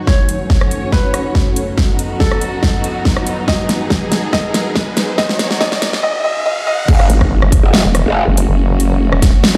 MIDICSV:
0, 0, Header, 1, 8, 480
1, 0, Start_track
1, 0, Tempo, 425532
1, 83, Time_signature, 4, 2, 24, 8
1, 10798, End_track
2, 0, Start_track
2, 0, Title_t, "Grand piano"
2, 0, Program_c, 0, 0
2, 82, Note_on_c, 0, 73, 92
2, 953, Note_off_c, 0, 73, 0
2, 1043, Note_on_c, 0, 71, 84
2, 1674, Note_off_c, 0, 71, 0
2, 2483, Note_on_c, 0, 69, 92
2, 3833, Note_off_c, 0, 69, 0
2, 3922, Note_on_c, 0, 75, 90
2, 4793, Note_off_c, 0, 75, 0
2, 4882, Note_on_c, 0, 75, 84
2, 5753, Note_off_c, 0, 75, 0
2, 5841, Note_on_c, 0, 75, 97
2, 6305, Note_off_c, 0, 75, 0
2, 6322, Note_on_c, 0, 75, 94
2, 6785, Note_off_c, 0, 75, 0
2, 6803, Note_on_c, 0, 75, 98
2, 7025, Note_off_c, 0, 75, 0
2, 7042, Note_on_c, 0, 75, 101
2, 7265, Note_off_c, 0, 75, 0
2, 7282, Note_on_c, 0, 75, 105
2, 7505, Note_off_c, 0, 75, 0
2, 7523, Note_on_c, 0, 75, 111
2, 7745, Note_off_c, 0, 75, 0
2, 10798, End_track
3, 0, Start_track
3, 0, Title_t, "Ambient pad"
3, 0, Program_c, 1, 92
3, 0, Note_on_c, 1, 63, 89
3, 0, Note_on_c, 1, 66, 85
3, 0, Note_on_c, 1, 71, 83
3, 0, Note_on_c, 1, 78, 87
3, 83, Note_on_c, 1, 61, 94
3, 730, Note_off_c, 1, 71, 0
3, 855, Note_off_c, 1, 63, 0
3, 879, Note_on_c, 1, 69, 73
3, 2004, Note_on_c, 1, 54, 84
3, 2258, Note_on_c, 1, 63, 82
3, 2774, Note_off_c, 1, 61, 0
3, 2774, Note_off_c, 1, 69, 0
3, 2873, Note_on_c, 1, 71, 80
3, 4005, Note_on_c, 1, 68, 83
3, 4694, Note_off_c, 1, 66, 0
3, 4694, Note_off_c, 1, 78, 0
3, 4793, Note_on_c, 1, 80, 73
3, 6546, Note_off_c, 1, 68, 0
3, 6614, Note_off_c, 1, 80, 0
3, 6803, Note_off_c, 1, 71, 0
3, 6804, Note_off_c, 1, 54, 0
3, 6805, Note_off_c, 1, 63, 0
3, 10798, End_track
4, 0, Start_track
4, 0, Title_t, "String section"
4, 0, Program_c, 2, 48
4, 83, Note_on_c, 2, 42, 83
4, 83, Note_on_c, 2, 54, 80
4, 83, Note_on_c, 2, 57, 78
4, 83, Note_on_c, 2, 61, 75
4, 83, Note_on_c, 2, 73, 89
4, 1984, Note_off_c, 2, 57, 0
4, 1984, Note_off_c, 2, 61, 0
4, 1984, Note_off_c, 2, 73, 0
4, 2003, Note_on_c, 2, 63, 79
4, 2004, Note_on_c, 2, 59, 82
4, 2004, Note_on_c, 2, 66, 91
4, 3904, Note_off_c, 2, 66, 0
4, 3923, Note_on_c, 2, 68, 93
4, 5798, Note_off_c, 2, 42, 0
4, 5805, Note_off_c, 2, 63, 0
4, 5824, Note_off_c, 2, 68, 0
4, 5844, Note_on_c, 2, 42, 83
4, 5844, Note_on_c, 2, 63, 72
4, 5844, Note_on_c, 2, 66, 92
4, 6758, Note_off_c, 2, 54, 0
4, 6759, Note_off_c, 2, 59, 0
4, 6794, Note_off_c, 2, 42, 0
4, 6794, Note_off_c, 2, 63, 0
4, 6794, Note_off_c, 2, 66, 0
4, 7764, Note_on_c, 2, 57, 88
4, 7764, Note_on_c, 2, 61, 81
4, 7764, Note_on_c, 2, 66, 94
4, 10798, Note_off_c, 2, 57, 0
4, 10798, Note_off_c, 2, 61, 0
4, 10798, Note_off_c, 2, 66, 0
4, 10798, End_track
5, 0, Start_track
5, 0, Title_t, "Wobble bass"
5, 0, Program_c, 3, 39
5, 8004, Note_on_c, 3, 32, 106
5, 8351, Note_off_c, 3, 32, 0
5, 8371, Note_on_c, 3, 30, 98
5, 8591, Note_off_c, 3, 30, 0
5, 8852, Note_on_c, 3, 28, 91
5, 9071, Note_off_c, 3, 28, 0
5, 9331, Note_on_c, 3, 30, 103
5, 9551, Note_off_c, 3, 30, 0
5, 9572, Note_on_c, 3, 30, 93
5, 10511, Note_off_c, 3, 30, 0
5, 10798, End_track
6, 0, Start_track
6, 0, Title_t, "Wobble bass"
6, 0, Program_c, 4, 39
6, 7764, Note_on_c, 4, 30, 101
6, 7986, Note_off_c, 4, 30, 0
6, 8610, Note_on_c, 4, 28, 104
6, 8830, Note_off_c, 4, 28, 0
6, 9091, Note_on_c, 4, 30, 100
6, 9311, Note_off_c, 4, 30, 0
6, 10798, End_track
7, 0, Start_track
7, 0, Title_t, "Riser"
7, 0, Program_c, 5, 103
7, 82, Note_on_c, 5, 60, 76
7, 7763, Note_off_c, 5, 60, 0
7, 10798, End_track
8, 0, Start_track
8, 0, Title_t, "Drums"
8, 83, Note_on_c, 9, 36, 95
8, 84, Note_on_c, 9, 38, 53
8, 196, Note_off_c, 9, 36, 0
8, 196, Note_off_c, 9, 38, 0
8, 324, Note_on_c, 9, 42, 78
8, 436, Note_off_c, 9, 42, 0
8, 563, Note_on_c, 9, 36, 99
8, 564, Note_on_c, 9, 38, 52
8, 676, Note_off_c, 9, 36, 0
8, 677, Note_off_c, 9, 38, 0
8, 692, Note_on_c, 9, 37, 80
8, 804, Note_off_c, 9, 37, 0
8, 804, Note_on_c, 9, 42, 82
8, 917, Note_off_c, 9, 42, 0
8, 1043, Note_on_c, 9, 36, 94
8, 1045, Note_on_c, 9, 38, 52
8, 1156, Note_off_c, 9, 36, 0
8, 1157, Note_off_c, 9, 38, 0
8, 1284, Note_on_c, 9, 37, 77
8, 1284, Note_on_c, 9, 42, 84
8, 1397, Note_off_c, 9, 37, 0
8, 1397, Note_off_c, 9, 42, 0
8, 1523, Note_on_c, 9, 36, 101
8, 1524, Note_on_c, 9, 38, 55
8, 1635, Note_off_c, 9, 36, 0
8, 1637, Note_off_c, 9, 38, 0
8, 1763, Note_on_c, 9, 42, 86
8, 1876, Note_off_c, 9, 42, 0
8, 2003, Note_on_c, 9, 36, 95
8, 2003, Note_on_c, 9, 38, 64
8, 2116, Note_off_c, 9, 36, 0
8, 2116, Note_off_c, 9, 38, 0
8, 2244, Note_on_c, 9, 42, 83
8, 2357, Note_off_c, 9, 42, 0
8, 2483, Note_on_c, 9, 36, 96
8, 2483, Note_on_c, 9, 38, 62
8, 2596, Note_off_c, 9, 36, 0
8, 2596, Note_off_c, 9, 38, 0
8, 2611, Note_on_c, 9, 37, 80
8, 2723, Note_on_c, 9, 42, 83
8, 2724, Note_off_c, 9, 37, 0
8, 2836, Note_off_c, 9, 42, 0
8, 2963, Note_on_c, 9, 36, 98
8, 2963, Note_on_c, 9, 38, 70
8, 3076, Note_off_c, 9, 36, 0
8, 3076, Note_off_c, 9, 38, 0
8, 3203, Note_on_c, 9, 42, 80
8, 3316, Note_off_c, 9, 42, 0
8, 3443, Note_on_c, 9, 36, 98
8, 3444, Note_on_c, 9, 38, 69
8, 3556, Note_off_c, 9, 36, 0
8, 3557, Note_off_c, 9, 38, 0
8, 3571, Note_on_c, 9, 37, 77
8, 3683, Note_on_c, 9, 42, 86
8, 3684, Note_off_c, 9, 37, 0
8, 3796, Note_off_c, 9, 42, 0
8, 3923, Note_on_c, 9, 36, 96
8, 3924, Note_on_c, 9, 38, 73
8, 4036, Note_off_c, 9, 36, 0
8, 4036, Note_off_c, 9, 38, 0
8, 4163, Note_on_c, 9, 38, 73
8, 4163, Note_on_c, 9, 42, 83
8, 4276, Note_off_c, 9, 38, 0
8, 4276, Note_off_c, 9, 42, 0
8, 4403, Note_on_c, 9, 36, 101
8, 4403, Note_on_c, 9, 38, 81
8, 4516, Note_off_c, 9, 36, 0
8, 4516, Note_off_c, 9, 38, 0
8, 4643, Note_on_c, 9, 38, 82
8, 4643, Note_on_c, 9, 42, 84
8, 4756, Note_off_c, 9, 38, 0
8, 4756, Note_off_c, 9, 42, 0
8, 4883, Note_on_c, 9, 36, 100
8, 4884, Note_on_c, 9, 38, 84
8, 4996, Note_off_c, 9, 36, 0
8, 4997, Note_off_c, 9, 38, 0
8, 5124, Note_on_c, 9, 38, 88
8, 5124, Note_on_c, 9, 42, 79
8, 5237, Note_off_c, 9, 38, 0
8, 5237, Note_off_c, 9, 42, 0
8, 5363, Note_on_c, 9, 36, 102
8, 5364, Note_on_c, 9, 38, 85
8, 5476, Note_off_c, 9, 36, 0
8, 5477, Note_off_c, 9, 38, 0
8, 5604, Note_on_c, 9, 38, 96
8, 5604, Note_on_c, 9, 42, 85
8, 5716, Note_off_c, 9, 38, 0
8, 5716, Note_off_c, 9, 42, 0
8, 5843, Note_on_c, 9, 36, 97
8, 5843, Note_on_c, 9, 38, 97
8, 5956, Note_off_c, 9, 36, 0
8, 5956, Note_off_c, 9, 38, 0
8, 5971, Note_on_c, 9, 38, 82
8, 6084, Note_off_c, 9, 38, 0
8, 6084, Note_on_c, 9, 38, 99
8, 6084, Note_on_c, 9, 42, 81
8, 6196, Note_off_c, 9, 38, 0
8, 6196, Note_off_c, 9, 42, 0
8, 6211, Note_on_c, 9, 38, 84
8, 6323, Note_on_c, 9, 36, 98
8, 6324, Note_off_c, 9, 38, 0
8, 6324, Note_on_c, 9, 38, 103
8, 6436, Note_off_c, 9, 36, 0
8, 6437, Note_off_c, 9, 38, 0
8, 6452, Note_on_c, 9, 38, 91
8, 6565, Note_off_c, 9, 38, 0
8, 6565, Note_on_c, 9, 38, 102
8, 6565, Note_on_c, 9, 42, 81
8, 6677, Note_off_c, 9, 38, 0
8, 6677, Note_off_c, 9, 42, 0
8, 6692, Note_on_c, 9, 38, 85
8, 6805, Note_off_c, 9, 38, 0
8, 7764, Note_on_c, 9, 36, 122
8, 7765, Note_on_c, 9, 49, 110
8, 7877, Note_off_c, 9, 36, 0
8, 7878, Note_off_c, 9, 49, 0
8, 7893, Note_on_c, 9, 37, 63
8, 8006, Note_off_c, 9, 37, 0
8, 8006, Note_on_c, 9, 42, 82
8, 8118, Note_off_c, 9, 42, 0
8, 8132, Note_on_c, 9, 36, 61
8, 8133, Note_on_c, 9, 37, 65
8, 8245, Note_off_c, 9, 36, 0
8, 8246, Note_off_c, 9, 37, 0
8, 8373, Note_on_c, 9, 37, 86
8, 8484, Note_on_c, 9, 36, 108
8, 8486, Note_off_c, 9, 37, 0
8, 8486, Note_on_c, 9, 42, 91
8, 8597, Note_off_c, 9, 36, 0
8, 8598, Note_off_c, 9, 42, 0
8, 8726, Note_on_c, 9, 38, 123
8, 8838, Note_off_c, 9, 38, 0
8, 8965, Note_on_c, 9, 37, 84
8, 8965, Note_on_c, 9, 42, 84
8, 9077, Note_off_c, 9, 37, 0
8, 9077, Note_off_c, 9, 42, 0
8, 9445, Note_on_c, 9, 42, 89
8, 9558, Note_off_c, 9, 42, 0
8, 9925, Note_on_c, 9, 42, 85
8, 10038, Note_off_c, 9, 42, 0
8, 10292, Note_on_c, 9, 37, 82
8, 10404, Note_on_c, 9, 36, 112
8, 10404, Note_on_c, 9, 38, 65
8, 10404, Note_on_c, 9, 42, 90
8, 10405, Note_off_c, 9, 37, 0
8, 10517, Note_off_c, 9, 36, 0
8, 10517, Note_off_c, 9, 38, 0
8, 10517, Note_off_c, 9, 42, 0
8, 10644, Note_on_c, 9, 38, 127
8, 10757, Note_off_c, 9, 38, 0
8, 10798, End_track
0, 0, End_of_file